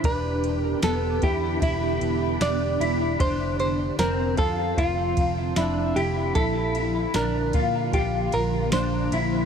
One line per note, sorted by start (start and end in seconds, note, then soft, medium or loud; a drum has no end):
0.04 0.73 E1 loud
0.04 6.31 D3 medium
0.04 3.17 B3 medium
0.04 3.16 D4 medium
0.04 0.83 D4 loud
0.04 3.16 G4 loud
0.04 0.61 B4 loud
0.04 kick loud
0.04 ride medium
0.44 ride soft
0.61 0.84 A#4 loud
0.82 1.17 E1 loud
0.82 1.22 B3 medium
0.82 1.24 A4 loud
0.82 snare loud
0.82 ride medium
0.82 tambourine medium
1.22 1.57 E2 loud
1.22 1.61 E4 medium
1.22 1.63 G4 loud
1.22 kick loud
1.22 ride medium
1.62 1.96 E1 loud
1.62 2.41 E4 medium
1.62 2.44 E4 loud
1.62 kick medium
1.62 ride medium
2.01 2.36 E1 medium
2.01 ride soft
2.40 2.75 E1 loud
2.40 2.80 D4 medium
2.40 3.20 D5 loud
2.40 snare loud
2.40 ride medium
2.40 tambourine medium
2.80 3.15 E1 loud
2.80 3.20 E4 medium
2.80 ride medium
3.19 3.89 F1 loud
3.19 9.45 F3 medium
3.19 6.32 C4 medium
3.19 3.98 D4 loud
3.19 3.59 C5 loud
3.19 kick loud
3.19 ride medium
3.60 3.99 C5 loud
3.60 ride soft
3.99 4.33 F1 medium
3.99 4.38 C4 loud
3.99 4.38 A#4 loud
3.99 snare loud
3.99 ride medium
3.99 tambourine medium
4.37 4.73 F2 loud
4.37 4.76 F4 medium
4.37 4.79 A4 loud
4.37 kick loud
4.37 ride soft
4.77 5.12 F1 loud
4.77 5.56 F4 medium
4.77 5.59 F4 loud
4.77 kick medium
4.77 ride medium
5.17 5.52 F1 medium
5.17 kick medium
5.17 ride soft
5.56 5.91 F1 loud
5.56 5.96 D4 medium
5.56 5.97 E4 medium
5.56 snare loud
5.56 ride medium
5.56 tambourine medium
5.96 6.30 F1 loud
5.96 6.34 E4 medium
5.96 6.37 G4 loud
5.96 ride soft
6.35 7.05 A#1 loud
6.35 9.45 D3 medium
6.35 9.45 A#3 medium
6.35 7.14 E4 loud
6.35 7.15 A4 loud
6.35 kick loud
6.35 ride medium
6.75 ride soft
7.14 7.49 A#1 loud
7.14 7.54 D4 medium
7.14 7.96 A#4 loud
7.14 snare loud
7.14 ride medium
7.14 tambourine medium
7.53 7.89 A#2 loud
7.53 7.93 F4 medium
7.53 kick loud
7.53 ride soft
7.93 8.28 A#1 loud
7.93 8.72 F4 medium
7.93 8.34 G4 loud
7.93 kick medium
7.93 ride medium
8.32 8.68 A#1 loud
8.32 8.73 A#4 medium
8.32 ride soft
8.72 9.07 A#1 loud
8.72 9.12 D4 medium
8.72 9.45 C5 medium
8.72 snare loud
8.72 ride medium
8.72 tambourine medium
9.12 9.45 A#1 loud
9.12 9.45 E4 medium
9.12 ride medium